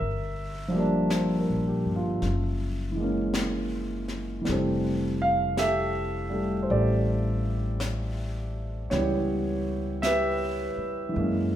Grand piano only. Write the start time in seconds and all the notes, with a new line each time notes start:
Already playing: A#4 E5
0.68 F3 G3
0.75 A#3 D4
1.11 C5
1.39 A#4
1.68 G4
1.96 F4
2.92 E3
2.96 G#3 A#3
3.03 C#4
4.41 E3 G3
4.48 A3
4.52 C4
5.22 F5
5.58 G4 A4 E5
6.30 G3 A3
6.63 C5
6.71 G4 A4 D5
8.90 E3 G3 B3 E4 G4 C#5
8.96 E4
10.02 G4 B4 E5
11.09 E3 G#3
11.16 A#3 C#4